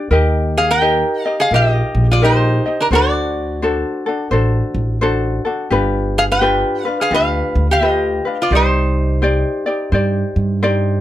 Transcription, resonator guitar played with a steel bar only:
0.57 0.68 G#4 medium
0.57 0.70 F5 medium
0.71 1.35 A#4 medium
0.71 1.24 G5 loud
1.24 1.41 F5 loud
1.40 1.51 G#4 medium
1.40 1.53 F5 medium
1.54 2.06 G4 medium
1.54 2.07 D#5 medium
2.11 2.22 F4 medium
2.11 2.24 D5 medium
2.24 2.76 D#4 medium
2.24 2.81 C5 medium
2.80 2.85 D4 medium
2.80 2.87 A#4 medium
2.93 4.28 F#4 medium
2.93 4.29 D5 medium
6.18 6.23 G#4 medium
6.18 6.23 F5 loud
6.32 6.96 B4 medium
6.32 6.85 G5 loud
6.85 7.02 F5 loud
7.01 7.12 G#4 medium
7.01 7.14 F5 medium
7.14 7.66 B4 medium
7.14 7.72 F5 medium
7.71 8.36 G4 medium
7.71 8.42 D#5 medium
8.42 8.53 F4 medium
8.42 8.53 D5 medium
8.55 10.60 D#4 medium
8.55 10.61 C5 medium

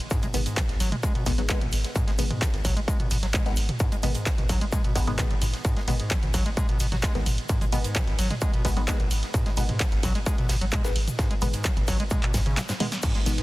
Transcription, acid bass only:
0.11 0.21 G#2 loud
0.23 0.26 G#3 medium
0.34 0.41 B2 medium
0.46 0.59 G#2 medium
0.57 0.64 G#3 loud
0.69 0.75 G#1 loud
0.80 0.90 F#3 medium
0.92 0.96 G#3 medium
1.03 1.13 G#3 loud
1.15 1.24 B2 medium
1.26 1.33 B2 medium
1.38 1.42 F#3 medium
1.49 1.59 G#3 loud
1.61 1.67 G#1 loud
1.95 2.05 G#2 loud
2.07 2.11 G#3 medium
2.19 2.25 B2 medium
2.30 2.43 G#2 medium
2.42 2.48 G#3 loud
2.53 2.60 G#1 loud
2.65 2.75 F#3 medium
2.77 2.80 G#3 medium
2.88 2.98 G#3 loud
3.00 3.09 B2 medium
3.11 3.17 B2 medium
3.23 3.27 F#3 medium
3.34 3.44 G#3 loud
3.46 3.52 G#1 loud
3.80 3.90 G#2 loud
3.92 3.96 G#3 medium
4.03 4.10 B2 medium
4.15 4.28 G#2 medium
4.26 4.33 G#3 loud
4.38 4.44 G#1 loud
4.49 4.59 F#3 medium
4.61 4.65 G#3 medium
4.73 4.82 G#3 loud
4.84 4.94 B2 medium
4.96 5.00 G#2 medium
5.07 5.17 G#2 medium
5.19 5.25 B2 loud
5.31 5.34 A2 medium
5.42 5.46 G#2 loud
5.65 5.75 G#2 loud
5.77 5.80 G#3 medium
5.88 5.94 B2 medium
6.00 6.12 G#2 medium
6.11 6.18 G#3 loud
6.23 6.29 G#1 loud
6.34 6.44 F#3 medium
6.46 6.50 G#3 medium
6.57 6.67 G#3 loud
6.69 6.78 B2 medium
6.80 6.87 B2 medium
6.92 6.96 F#3 medium
7.03 7.13 G#3 loud
7.15 7.21 G#1 loud
7.49 7.59 G#2 loud
7.61 7.65 G#3 medium
7.72 7.79 B2 medium
7.84 7.97 G#2 medium
7.95 8.02 G#3 loud
8.07 8.14 G#1 loud
8.19 8.28 F#3 medium
8.31 8.34 G#3 medium
8.42 8.52 G#3 loud
8.54 8.63 B2 medium
8.65 8.71 B2 medium
8.77 8.80 F#3 medium
8.88 8.98 G#3 loud
9.00 9.06 G#1 loud
9.34 9.44 G#2 loud
9.46 9.50 G#3 medium
9.57 9.64 B2 medium
9.69 9.82 G#2 medium
9.80 9.87 G#3 loud
9.92 9.98 G#1 loud
10.03 10.13 F#3 medium
10.15 10.19 G#3 medium
10.26 10.36 G#3 loud
10.38 10.47 B2 medium
10.49 10.56 B2 medium
10.61 10.65 F#3 medium
10.72 10.82 G#3 loud
10.84 10.90 G#1 loud
11.19 11.28 G#2 loud
11.31 11.34 G#3 medium
11.42 11.48 B2 medium
11.54 11.66 G#2 medium
11.65 11.71 G#3 loud
11.77 11.83 G#1 loud
11.88 11.98 F#3 medium
12.00 12.03 G#3 medium
12.11 12.21 G#3 loud
12.23 12.32 B2 medium
12.34 12.41 G#2 loud
12.46 12.59 C#3 medium
12.57 12.61 G#2 loud
12.69 12.73 G#2 medium
12.80 12.87 G#3 medium
13.03 13.13 G#2 loud
13.15 13.19 G#3 medium
13.26 13.33 B2 medium
13.38 13.43 G#2 medium

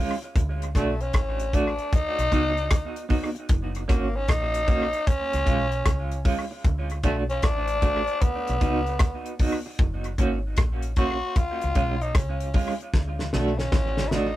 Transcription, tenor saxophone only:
0.76 1.03 A3 medium
1.01 1.56 C#4 medium
1.55 1.95 D4 loud
1.94 3.11 D#4 loud
3.91 4.17 A#3 medium
4.16 4.30 C#4 loud
4.29 5.09 D#4 loud
5.07 6.25 C#4 loud
7.05 7.16 A3 medium
7.30 7.45 C#4 loud
7.44 8.24 D4 loud
8.22 9.40 B3 loud
10.98 11.39 F#4 loud
11.37 12.03 F4 loud
12.02 12.17 D#4 loud
12.16 12.80 C#4 medium
13.33 13.60 A3 medium
13.58 14.09 C#4 loud
14.07 14.15 E4 medium
14.14 14.36 D#4 loud

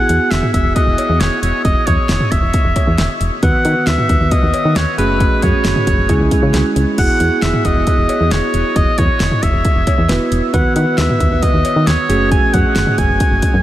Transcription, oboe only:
0.00 0.33 F#5 loud
0.31 0.53 E5 loud
0.54 0.74 E5 medium
0.75 1.22 D#5 loud
1.20 1.42 C#5 loud
1.42 1.63 C#5 medium
1.65 1.88 D#5 loud
1.87 2.33 C#5 loud
2.31 3.20 E5 medium
3.43 3.89 F#5 loud
3.87 4.33 E5 loud
4.32 4.78 D#5 loud
4.76 4.98 C#5 loud
4.98 5.44 B4 loud
5.43 6.32 C#5 medium
6.99 7.44 F#5 loud
7.43 7.67 E5 loud
7.65 8.33 D#5 loud
8.32 8.78 C#5 loud
8.76 9.00 D#5 loud
8.98 9.44 C#5 loud
9.43 10.32 E5 medium
10.54 10.74 F#5 loud
10.76 11.00 F#5 medium
10.98 11.44 E5 loud
11.43 11.88 D#5 loud
11.87 12.31 C#5 loud
12.31 12.55 G#5 loud
12.54 13.00 F#5 loud
12.98 13.63 G#5 loud

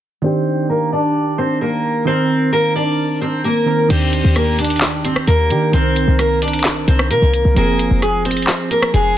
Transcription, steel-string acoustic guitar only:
0.24 0.67 C4 medium
0.24 0.67 C5 medium
0.69 0.89 A#3 medium
0.69 0.89 A#4 medium
0.92 1.36 D4 medium
0.92 1.35 D5 medium
1.38 1.58 C4 medium
1.38 1.57 C5 medium
1.61 2.05 A#3 medium
1.61 2.04 A#4 medium
2.07 2.50 C4 medium
2.07 2.50 C5 medium
2.53 2.72 A#3 medium
2.53 2.72 A#4 medium
2.76 3.19 D4 medium
2.76 3.19 D5 medium
3.21 3.41 C4 medium
3.21 3.41 C5 medium
3.44 3.88 A#3 medium
3.44 3.87 A#4 medium
3.90 4.34 C4 medium
3.90 4.33 C5 loud
4.36 4.56 A#3 medium
4.36 4.55 A#4 loud
4.59 5.02 D4 medium
4.59 5.02 D5 medium
5.05 5.24 C4 medium
5.05 5.24 C5 medium
5.27 5.71 A#3 medium
5.27 5.71 A#4 medium
5.73 6.17 C4 medium
5.73 6.16 C5 medium
6.19 6.39 A#3 medium
6.19 6.38 A#4 medium
6.42 6.85 D4 medium
6.42 6.85 D5 medium
6.88 7.08 C4 medium
6.88 7.07 C5 medium
7.11 7.54 A#3 medium
7.11 7.54 A#4 medium
7.57 8.00 A#3 medium
7.57 8.00 A#4 medium
8.02 8.22 G#3 medium
8.02 8.22 G#4 medium
8.25 8.69 C4 medium
8.25 8.68 C5 medium
8.71 8.91 A#3 medium
8.71 8.90 A#4 medium
8.94 9.18 G#3 medium
8.94 9.18 G#4 medium

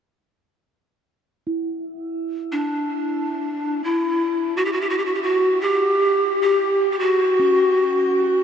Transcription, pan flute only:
2.52 3.85 D4 medium
3.84 4.56 E4 medium
4.57 4.67 F#4 medium
4.65 4.74 G4 medium
4.73 4.83 F#4 medium
4.81 4.91 G4 medium
4.90 5.00 F#4 medium
4.98 5.07 G4 medium
5.06 5.16 F#4 medium
5.14 5.24 G4 medium
5.23 5.63 F#4 medium
5.61 6.40 G4 medium
6.42 6.92 G4 medium
6.92 7.01 G4 soft
6.99 8.44 F#4 medium

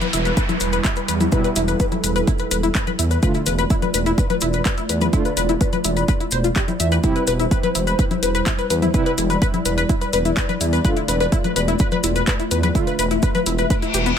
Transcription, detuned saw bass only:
0.13 0.32 E1 medium
0.61 0.79 E1 loud
1.08 1.27 E2 medium
1.56 1.74 E1 loud
2.04 2.22 E1 medium
2.51 2.70 E1 loud
2.99 3.17 E2 medium
3.47 3.65 E1 loud
3.94 4.12 E1 medium
4.42 4.60 E1 loud
4.89 5.08 E2 medium
5.37 5.55 E1 loud
5.85 6.03 E1 medium
6.32 6.51 E1 loud
6.80 6.98 E2 medium
7.27 7.46 E1 loud
7.75 7.93 E1 medium
8.23 8.41 E1 loud
8.70 8.89 E2 medium
9.18 9.36 E1 loud
9.66 9.84 E1 medium
10.13 10.32 E1 loud
10.61 10.79 E2 medium
11.08 11.27 E1 loud
11.56 11.74 E1 medium
12.04 12.22 E1 loud
12.51 12.70 E2 medium
12.99 13.17 E1 medium
13.46 13.65 E1 medium
13.94 14.12 E1 loud

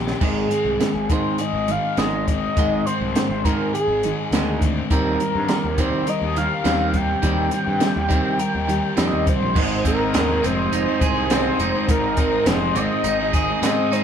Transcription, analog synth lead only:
0.24 1.14 G#4 medium
1.12 1.42 C5 medium
1.41 1.73 D#5 loud
1.71 1.98 F5 loud
1.98 2.25 D#5 loud
2.29 2.87 D#5 loud
2.86 3.15 C5 loud
3.16 3.46 C5 medium
3.45 3.73 A#4 medium
3.73 4.57 G#4 medium
4.92 5.82 A#4 medium
5.80 6.11 C5 medium
6.09 6.37 D#5 loud
6.38 6.98 F5 loud
6.96 8.98 G5 loud
8.98 9.25 D#5 loud
9.29 9.82 C5 medium
9.87 10.47 A#4 medium
10.45 11.32 C5 medium
11.32 11.86 C5 loud
11.90 12.48 A#4 medium
12.46 12.77 C5 medium
12.75 13.63 D#5 loud
13.65 13.94 D#5 medium
13.93 14.04 C5 loud

